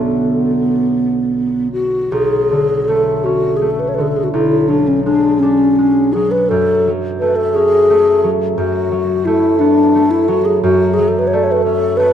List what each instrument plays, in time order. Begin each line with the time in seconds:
Already playing: harp B1 D3 A3 B3 C#4 D4 F#4, alto flute B3
1.72 alto flute F#4
2.12 harp B1, alto flute G#4
2.51 harp D3
2.88 harp A3, alto flute A4
3.24 harp C#4, alto flute F#4
3.57 alto flute G#4
3.61 harp A3
3.70 alto flute A4
3.80 alto flute B4
3.89 alto flute C#5
3.95 harp D3, alto flute B4
4.01 alto flute G#4
4.08 alto flute A4
4.16 alto flute G#4
4.24 alto flute F#4
4.33 harp B1, alto flute E4
4.68 harp F#3, alto flute D4
4.87 alto flute C#4
5.04 harp G#3, alto flute D4
5.39 alto flute C#4, harp D4
5.78 harp G#3
6.13 harp F#3, alto flute G#4
6.31 alto flute B4
6.49 harp F#2, alto flute A4
6.87 harp F#3
7.19 harp A3, alto flute B4
7.36 alto flute A4
7.54 harp C#4, alto flute G#4
7.90 harp A3
8.24 harp F#3
8.56 harp F#2, alto flute F#4
8.92 harp F#3
9.25 harp A3, alto flute E4
9.59 harp B3, alto flute D4
9.95 harp A3
10.11 alto flute E4
10.28 harp F#3, alto flute F#4
10.45 alto flute G#4
10.63 harp F#2, alto flute F#4
10.94 alto flute G#4
10.99 harp F#3
11.08 alto flute A4
11.19 alto flute B4
11.27 alto flute C#5
11.33 harp A3, alto flute D5
11.44 alto flute C#5
11.52 alto flute B4
11.62 harp C#4, alto flute A4
11.97 harp A3, alto flute B4